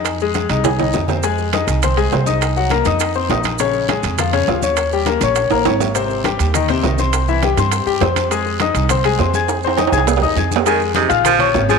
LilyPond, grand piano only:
\new Staff \with { instrumentName = "Grand piano" } { \time 4/4 \key f \minor \tempo 4 = 204 <ees' ees''>8 <aes aes'>4 <ees' ees''>8 <aes' aes''>8 <ees' ees''>4 <c' c''>8 | <aes aes' aes''>4 <ees' ees'' ees'''>4 <c' c'' c'''>8 <aes aes' aes''>8 <c' c'' c'''>8 <ees' ees'' ees'''>8~ | <ees' ees'' ees'''>8 <ges ges' ges''>8 <bes bes' bes''>8 <ees' ees'' ees'''>4 <c' c'' c'''>8 <ees' ees'' ees'''>4 | <des des' des''>4 <aes aes' aes''>4 <f f' f''>8 <des des' des''>8 <f f' f''>8 <des' des'' des'''>8~ |
<des' des'' des'''>8 <g g' g''>8 <bes bes' bes''>8 <des' des'' des'''>4 <bes bes' bes''>8 <des' des'' des'''>4 | <c c' c''>4 <g g' g''>4 <ees ees' ees''>8 <c c' c''>8 <ees ees' ees''>8 <c' c'' c'''>8~ | <c' c'' c'''>8 <e e' e''>8 <g g' g''>8 <c' c'' c'''>4 <g g' g''>8 <c' c'' c'''>4 | <aes aes' aes''>4 <ees' ees'' ees'''>4 <c' c'' c'''>8 <aes aes' aes''>8 <c' c'' c'''>8 <aes' aes'' aes'''>8~ |
<aes' aes'' aes'''>8 <c' c'' c'''>8 <ees' ees'' ees'''>8 <aes' aes'' aes'''>4 <ees' ees'' ees'''>8 <aes' aes'' aes'''>4 | <aes aes' aes''>4 <ees' ees'' ees'''>8 <f' f'' f'''>4 <des' des'' des'''>4 <aes aes' aes''>8 | }